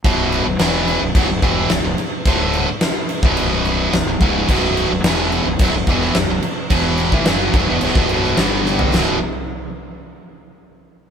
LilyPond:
<<
  \new Staff \with { instrumentName = "Distorted electric guitar" } { \clef bass \time 4/4 \key b \minor \tempo 4 = 108 <b,, fis, b,>8. <b,, fis,>16 <e, b, e>8. <b,, fis,>16 <b,, fis,>16 <b,, fis,>16 <e, b, e>8 <b,, fis,>16 <b,, fis,>16 r8 | <d, a, d>8. r4 <b,, fis, b,>4~ <b,, fis, b,>16 <b,, fis,>16 <b,, fis,>16 <cis, gis, cis>8 | <b,, fis, b,>8. <b,, fis,>16 <e, b, e>8. <b,, fis,>16 <b,, fis,>16 <b,, fis,>16 <e, b, e>8 <b,, fis,>16 <b,, fis,>16 r8 | <e, b, e>8. <a, e>16 <fis, cis fis>8 <b,, fis,>16 <e, b,>16 <b,, fis,>16 <e, b,>16 <b,, fis, b,>8 <g, d g>4 |
<b,, fis, b,>8 r2. r8 | }
  \new Staff \with { instrumentName = "Fingered electric bass" } { \clef bass \time 4/4 \key b \minor b,,,8. b,,,16 e,,8. b,,,16 b,,,16 b,,,16 e,,8 b,,,16 b,,,16 r8 | d,,8. r4 b,,,4~ b,,,16 b,,,16 b,,,16 cis,,8 | b,,,8. b,,,16 e,,8. b,,,16 b,,,16 b,,,16 e,,8 b,,,16 b,,,16 r8 | e,,8. a,,16 fis,,8 b,,,16 e,,16 b,,,16 e,,16 b,,,8 g,,4 |
b,,,8 r2. r8 | }
  \new DrumStaff \with { instrumentName = "Drums" } \drummode { \time 4/4 <cymc bd>8 cymc8 <cymc sn>8 cymc8 <cymc bd>8 <cymc bd>8 <cymc sn>8 cymc8 | <cymc bd>8 cymc8 <cymc sn>8 cymc16 bd16 cymc8 cymc8 <cymc sn>8 <cymc bd>8 | <cymc bd>8 cymc8 <cymc sn>8 cymc8 <cymc bd>8 <cymc bd>16 sn16 <cymc sn>8 cymc8 | <cymc bd>8 cymc16 bd16 <cymc sn>8 <cymc bd>8 cymc16 bd16 cymc16 sn16 <cymc sn>8 sn16 tomfh16 |
<cymc sn>4 r4 r4 r4 | }
>>